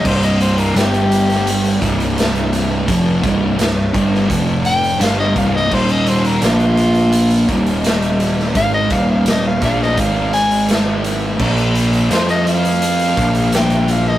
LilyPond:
<<
  \new Staff \with { instrumentName = "Soprano saxophone" } { \time 4/4 \key c \minor \tempo 4 = 84 c''16 ees''16 c''16 bes'16 g'2 r4 | r2 r8 g''8 f''16 ees''16 f''16 ees''16 | c''16 ees''16 c''16 bes'16 f'2 r4 | f''16 ees''16 f''16 f''16 ees''16 f''16 f''16 ees''16 f''8 aes''8 r4 |
r4 c''16 ees''16 f''4. g''8 f''16 ees''16 | }
  \new Staff \with { instrumentName = "Distorted electric guitar" } { \clef bass \time 4/4 \key c \minor <c, g, c>4 <g, d g>4. <c, g, c>4. | <f, c f>8 <c, g, c>8 <c, g,>8 <g, d g>8 <f, c f>4 <g, d g>8 <c, g, c>8 | <ees, bes, ees>4 <bes, f bes>4. <ees, bes, ees>4. | <aes, ees aes>8 <ees, bes, ees>8 <ees, bes,>8 <bes, f bes>8 <aes, ees aes>2 |
<bes, f bes>4 <f c' f'>4. <bes, f bes>4. | }
  \new Staff \with { instrumentName = "Picked electric bass" } { \clef bass \time 4/4 \key c \minor c,,4 g,,4. c,,4. | f,,8 c,,8 c,,8 g,,8 f,,4 g,,8 c,,8 | ees,,4 bes,,4. ees,,4. | aes,,8 ees,,8 ees,,8 bes,,8 aes,,2 |
bes,,4 f,4. bes,,4. | }
  \new DrumStaff \with { instrumentName = "Drums" } \drummode { \time 4/4 <cymc bd>16 hh16 hh16 hh16 <hh sn>16 hh16 hh16 <hh sn>16 hh16 hh16 <hh bd>16 hh16 <hh sn>16 hh16 hh8 | <hh bd>8 <hh bd>8 <hh sn>8 <hh bd>16 sn16 <hh bd>8 hh16 hh16 <hh sn>8 <hh bd>16 sn16 | <cymc bd>16 hh16 hh16 hh16 <hh sn>16 hh16 hh16 hh16 hh16 hh16 <hh bd>16 hh16 <hh sn>16 hh16 hh16 sn16 | <hh bd>8 <hh bd>8 <hh sn>8 <hh bd>16 sn16 <hh bd>8 hh16 hh16 <hh sn>8 hh8 |
<cymc bd>16 hh16 hh16 hh16 <hh sn>16 hh16 hh16 hh16 hh16 hh16 <hh bd>16 hh16 <hh sn>16 hh16 hh8 | }
>>